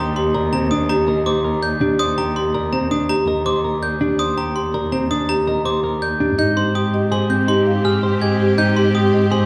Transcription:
0.00 6.27 D#2 medium
0.00 0.22 G4 medium
0.00 0.22 A#5 medium
0.16 0.40 G4 medium
0.16 0.40 C6 medium
0.35 0.59 A#4 medium
0.35 0.59 D5 loud
0.53 0.71 C4 medium
0.53 0.77 C5 medium
0.53 0.77 A#5 medium
0.71 0.95 D4 loud
0.71 0.95 D#6 medium
0.89 1.13 G4 loud
0.89 1.13 A#5 loud
1.07 1.26 A#4 medium
1.07 1.32 D#5 medium
1.26 1.50 G4 medium
1.26 1.44 C5 loud
1.26 1.50 D6 medium
1.44 1.68 A#4 medium
1.63 1.87 D5 medium
1.63 1.87 G6 medium
1.81 2.05 D4 loud
1.81 2.05 G4 medium
1.99 2.23 C5 medium
1.99 2.23 D5 loud
1.99 2.23 D#6 loud
2.18 2.42 G4 medium
2.18 2.42 A#5 medium
2.36 2.60 G4 medium
2.36 2.60 C6 medium
2.54 2.78 A#4 medium
2.54 2.78 D5 medium
2.73 2.91 C4 medium
2.73 2.96 C5 medium
2.73 2.96 A#5 medium
2.91 3.15 D4 medium
2.91 3.15 D#6 medium
3.09 3.33 G4 loud
3.09 3.33 A#5 loud
3.28 3.45 A#4 medium
3.28 3.51 D#5 medium
3.46 3.70 G4 medium
3.46 3.64 C5 medium
3.46 3.70 D6 medium
3.64 3.88 A#4 medium
3.83 4.06 D5 medium
3.83 4.06 G6 medium
4.01 4.25 D4 loud
4.01 4.25 G4 medium
4.19 4.43 C5 medium
4.19 4.43 D5 medium
4.19 4.43 D#6 medium
4.37 4.61 G4 medium
4.37 4.61 A#5 medium
4.56 4.80 G4 medium
4.56 4.79 C6 medium
4.74 4.98 A#4 medium
4.74 4.98 D5 medium
4.92 5.10 C4 medium
4.92 5.16 C5 medium
4.92 5.16 A#5 medium
5.11 5.34 D4 loud
5.11 5.34 D#6 medium
5.29 5.53 G4 medium
5.29 5.53 A#5 medium
5.47 5.65 A#4 medium
5.47 5.71 D#5 medium
5.65 5.89 G4 medium
5.65 5.83 C5 medium
5.65 5.89 D6 medium
5.84 6.07 A#4 medium
6.02 6.26 D5 medium
6.02 6.26 G6 medium
6.20 6.38 D4 medium
6.20 6.44 G4 medium
6.38 9.46 G#2 medium
6.38 9.46 C4 medium
6.38 6.62 D#4 medium
6.38 9.46 G4 medium
6.38 6.52 G4 soft
6.38 6.62 D#5 medium
6.38 6.62 G6 medium
6.57 6.70 G4 soft
6.57 6.81 C5 medium
6.57 6.81 C6 medium
6.75 6.99 G4 medium
6.75 6.88 G4 medium
6.75 6.99 D#6 medium
6.94 7.06 G4 medium
6.94 7.17 D#5 medium
7.12 7.24 G4 medium
7.12 7.35 G#4 medium
7.12 7.36 C5 medium
7.12 7.36 C6 medium
7.30 7.54 C4 medium
7.30 7.43 G4 medium
7.30 7.54 G6 medium
7.48 7.72 D#4 medium
7.48 7.72 G4 medium
7.48 7.61 G4 medium
7.48 7.72 C6 medium
7.67 7.80 G4 medium
7.67 7.90 F5 medium
7.85 8.09 G4 medium
7.85 7.98 G4 medium
7.85 8.03 G#4 medium
7.85 8.09 F6 medium
8.03 8.16 G4 medium
8.03 8.21 C5 medium
8.22 8.35 G4 medium
8.22 8.45 G#4 medium
8.22 8.45 D#5 medium
8.22 8.45 G#6 medium
8.40 8.64 G4 medium
8.40 8.53 G4 medium
8.58 8.82 D#4 medium
8.58 8.71 G4 medium
8.58 8.82 D#5 medium
8.58 8.82 G6 medium
8.76 8.90 G4 medium
8.76 9.00 C5 medium
8.76 9.00 C6 medium
8.95 9.18 G4 medium
8.95 9.19 G4 medium
8.95 9.08 G4 medium
8.95 9.18 D#6 medium
9.13 9.26 G4 medium
9.13 9.37 D#5 medium
9.31 9.45 G4 medium
9.31 9.46 G#4 medium
9.31 9.46 C5 medium
9.31 9.46 C6 medium

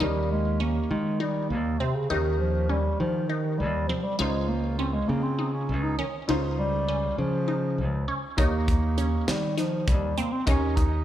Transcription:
0.00 0.79 D#2 medium
0.00 2.06 D#3 medium
0.00 0.31 G3 medium
0.00 2.06 A#3 medium
0.00 2.07 C#4 medium
0.00 0.32 D#4 medium
0.00 2.07 G4 medium
0.31 0.62 G#3 medium
0.60 0.92 A#3 medium
0.60 0.92 C#4 medium
0.90 1.52 D#3 loud
0.90 1.20 G#3 medium
1.20 1.48 G3 medium
1.20 1.52 D#4 medium
1.50 1.76 D#2 medium
1.50 1.81 A#3 medium
1.79 1.96 C3 medium
1.79 1.96 C4 medium
1.94 2.11 C#3 medium
2.09 2.88 D#2 medium
2.09 2.38 D#3 medium
2.09 4.15 D#3 medium
2.09 4.16 A#3 medium
2.09 4.16 C#4 medium
2.09 2.42 D#4 medium
2.09 4.16 G4 medium
2.39 2.67 F3 medium
2.69 2.98 G3 medium
2.69 3.01 C#4 medium
2.99 3.62 D#3 loud
2.99 3.30 F3 medium
3.29 3.60 D#3 medium
3.29 3.61 D#4 medium
3.58 3.86 D#2 medium
3.58 3.89 G3 medium
3.88 4.05 F3 medium
3.88 4.05 C4 medium
4.03 4.18 G3 medium
4.18 4.97 C#2 medium
4.18 6.24 C#3 medium
4.18 4.50 G#3 medium
4.18 6.25 C#4 medium
4.18 4.51 D#4 medium
4.18 6.25 F4 medium
4.18 6.25 C5 medium
4.48 4.78 A#3 medium
4.78 4.95 C4 medium
4.78 5.11 C#4 medium
4.93 5.09 G#3 medium
5.08 5.71 C#3 loud
5.08 5.24 A#3 loud
5.23 5.53 C4 loud
5.39 5.71 D#4 medium
5.53 5.85 C#4 medium
5.69 5.95 C#2 medium
5.83 5.98 D#4 medium
5.99 6.05 D#3 medium
5.99 6.15 C#4 medium
6.28 7.06 C#2 medium
6.28 8.33 C#3 medium
6.28 8.34 C#4 medium
6.28 6.60 D#4 medium
6.28 8.34 F4 medium
6.28 8.35 C5 medium
6.58 7.14 G3 loud
6.88 7.20 C#4 medium
7.18 7.80 C#3 medium
7.18 8.04 F3 loud
7.48 7.80 D#4 medium
7.78 8.04 C#2 medium
8.08 8.24 C#4 medium
8.37 9.16 D#2 medium
8.37 10.42 D#3 medium
8.37 9.24 A#3 medium
8.37 10.43 D#4 medium
8.37 8.70 D#4 medium
8.37 10.43 G4 medium
8.37 10.43 C#5 medium
8.37 kick loud
8.37 closed hi-hat medium
8.68 kick medium
8.68 closed hi-hat medium
8.98 9.29 C#4 medium
8.98 closed hi-hat medium
9.28 9.89 D#3 loud
9.28 9.55 G3 medium
9.28 snare loud
9.28 closed hi-hat medium
9.57 9.90 F3 medium
9.57 9.89 D#4 medium
9.57 snare soft
9.57 closed hi-hat medium
9.88 10.13 D#2 medium
9.88 10.20 G3 medium
9.88 kick loud
9.88 closed hi-hat medium
10.18 10.34 A#3 medium
10.18 10.33 C4 medium
10.18 closed hi-hat medium
10.32 10.46 C4 medium
10.46 11.04 D#2 medium
10.46 11.04 D#3 medium
10.46 10.78 C#4 loud
10.46 11.04 D#4 medium
10.46 10.79 D#4 medium
10.46 11.04 G4 medium
10.46 11.04 C#5 medium
10.46 kick loud
10.46 closed hi-hat medium
10.76 11.04 D#4 medium
10.76 kick medium
10.76 closed hi-hat medium

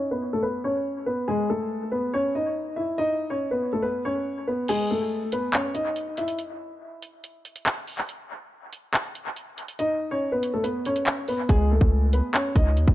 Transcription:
0.11 0.31 B3 medium
0.11 0.31 B4 medium
0.33 0.43 A3 medium
0.33 0.43 A4 medium
0.43 0.63 B3 medium
0.43 0.62 B4 medium
0.64 1.05 C#4 medium
0.64 1.04 C#5 medium
1.06 1.27 B3 medium
1.06 1.26 B4 medium
1.28 1.48 G#3 medium
1.28 1.48 G#4 medium
1.50 1.90 A3 medium
1.50 1.89 A4 medium
1.92 2.12 B3 medium
1.92 2.11 B4 medium
2.14 2.34 C#4 medium
2.14 2.33 C#5 medium
2.35 2.75 D#4 medium
2.35 2.75 D#5 medium
2.76 2.97 E4 medium
2.76 2.96 E5 medium
2.98 3.29 D#4 medium
2.98 3.28 D#5 medium
3.30 3.50 C#4 medium
3.30 3.50 C#5 medium
3.51 3.71 B3 medium
3.51 3.71 B4 medium
3.73 3.83 A3 medium
3.73 3.83 A4 medium
3.82 4.03 B3 medium
3.82 4.03 B4 medium
4.05 4.45 C#4 medium
4.05 4.45 C#5 medium
4.47 4.67 B3 medium
4.47 4.67 B4 medium
4.68 4.89 G#3 medium
4.68 4.88 G#4 loud
4.68 closed hi-hat medium
4.68 crash medium
4.91 5.31 A3 medium
4.91 5.30 A4 medium
5.32 5.53 B3 medium
5.32 5.52 B4 medium
5.32 closed hi-hat medium
5.53 5.73 C#4 medium
5.53 5.73 C#5 medium
5.53 clap loud
5.74 6.15 D#4 medium
5.74 6.15 D#5 medium
5.74 closed hi-hat medium
5.96 closed hi-hat medium
6.17 6.38 E4 medium
6.17 6.37 E5 medium
6.17 closed hi-hat medium
6.28 closed hi-hat medium
6.39 closed hi-hat medium
7.03 closed hi-hat medium
7.24 closed hi-hat medium
7.45 closed hi-hat medium
7.56 closed hi-hat medium
7.66 clap loud
7.66 closed hi-hat medium
7.88 open hi-hat medium
7.98 clap medium
8.09 closed hi-hat medium
8.73 closed hi-hat medium
8.94 clap loud
9.15 closed hi-hat medium
9.36 closed hi-hat medium
9.58 closed hi-hat medium
9.68 closed hi-hat medium
9.79 10.09 D#4 medium
9.79 10.09 D#5 medium
9.79 closed hi-hat medium
10.11 10.31 C#4 medium
10.11 10.31 C#5 medium
10.32 10.52 B3 medium
10.32 10.52 B4 medium
10.43 closed hi-hat medium
10.54 10.64 A3 medium
10.54 10.63 A4 medium
10.64 10.84 B3 medium
10.64 10.84 B4 medium
10.64 closed hi-hat medium
10.85 11.26 C#4 medium
10.85 11.26 C#5 medium
10.85 closed hi-hat medium
10.96 closed hi-hat medium
11.06 clap loud
11.06 closed hi-hat medium
11.28 11.48 B3 medium
11.28 11.48 B4 medium
11.28 open hi-hat medium
11.49 11.80 C#2 loud
11.49 11.70 G#3 medium
11.49 11.69 G#4 loud
11.49 kick loud
11.49 closed hi-hat medium
11.71 12.11 A3 medium
11.71 12.11 A4 medium
11.81 12.22 C#2 loud
11.81 kick loud
12.13 12.33 B3 medium
12.13 12.33 B4 medium
12.13 closed hi-hat medium
12.34 12.54 C#4 medium
12.34 12.54 C#5 medium
12.34 clap loud
12.55 12.78 C#2 loud
12.55 12.95 D#4 medium
12.55 12.95 D#5 medium
12.55 kick loud
12.55 closed hi-hat medium
12.77 12.87 D#2 loud
12.77 closed hi-hat medium
12.88 12.95 C#2 loud
12.88 kick medium

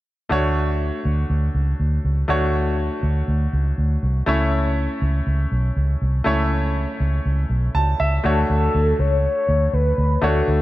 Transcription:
0.29 0.90 D2 medium
0.29 2.24 A3 medium
0.29 2.25 D4 medium
0.29 2.25 F#4 medium
0.29 2.26 C#5 medium
1.05 1.23 D2 medium
1.30 1.48 D2 medium
1.54 1.72 C#2 medium
1.80 1.97 D2 medium
2.05 2.22 C#2 medium
2.28 2.88 D2 medium
2.28 4.23 A3 medium
2.28 4.23 D4 medium
2.28 4.24 F#4 medium
2.28 4.24 C#5 medium
3.03 3.21 D2 medium
3.28 3.46 D2 medium
3.53 3.71 C#2 medium
3.78 3.96 D2 medium
4.03 4.21 C2 medium
4.26 4.86 C#2 medium
4.26 6.21 A3 medium
4.26 6.22 C#4 medium
4.26 6.22 E4 medium
4.26 6.22 C#5 medium
5.02 5.20 C#2 medium
5.27 5.45 C#2 medium
5.52 5.69 B1 medium
5.76 5.94 C#2 medium
6.02 6.19 C2 medium
6.24 6.85 C#2 medium
6.24 8.19 A3 medium
6.24 8.20 C#4 medium
6.24 8.20 E4 medium
6.24 8.21 C#5 medium
7.00 7.18 C#2 medium
7.26 7.43 C#2 medium
7.50 7.68 B1 medium
7.75 7.92 C#2 medium
7.75 7.98 A5 medium
8.00 8.18 C#2 medium
8.00 8.47 E5 medium
8.24 8.42 D2 medium
8.24 10.18 A3 medium
8.24 10.19 D4 medium
8.24 10.19 F#4 medium
8.24 8.48 A4 medium
8.24 10.19 C#5 medium
8.49 8.67 D2 medium
8.49 9.01 A4 medium
8.75 8.92 D2 loud
8.99 9.26 C#2 medium
8.99 9.75 C#5 loud
9.49 9.66 D2 medium
9.73 9.91 D2 medium
9.73 10.26 B4 loud
9.98 10.16 D2 medium
10.22 10.40 D2 loud
10.22 10.62 A3 medium
10.22 10.62 D4 medium
10.22 10.62 F#4 medium
10.22 10.62 A4 medium
10.22 10.62 C#5 medium
10.48 10.62 D2 medium

